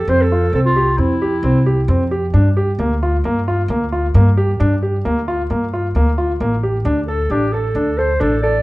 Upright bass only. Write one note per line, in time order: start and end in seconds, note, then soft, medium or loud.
0.08 0.49 F2 medium
0.53 0.94 C2 medium
0.98 1.40 F2 medium
1.43 1.85 C2 medium
1.88 2.30 F2 medium
2.34 2.75 G2 medium
2.79 3.20 D2 medium
3.24 3.65 G2 medium
3.68 4.10 D2 medium
4.14 4.56 G2 medium
4.60 5.01 G2 medium
5.05 5.46 D2 medium
5.50 5.91 G2 medium
5.95 6.36 D2 medium
6.40 6.81 A1 medium
6.85 7.26 D2 medium
7.30 7.71 A1 medium
7.75 8.16 D2 medium
8.21 8.61 A1 medium